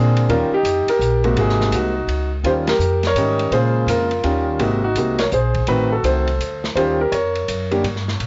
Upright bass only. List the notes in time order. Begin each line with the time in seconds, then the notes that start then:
Already playing: A#2
0.29 D#2
0.50 muted upright bass stroke
0.63 F2
0.87 muted upright bass stroke
0.99 A#1
1.35 G#1
1.71 C2
2.08 C#2
2.44 D#2
2.79 F2
3.15 G#2
3.51 A#2
3.86 F2
4.24 D#2
4.60 G#1
4.95 C2
5.32 A#1
5.67 A1
6.03 C2
6.39 D2
6.75 D#2
7.12 F2
7.48 F#2
7.83 G2
8.20 A#2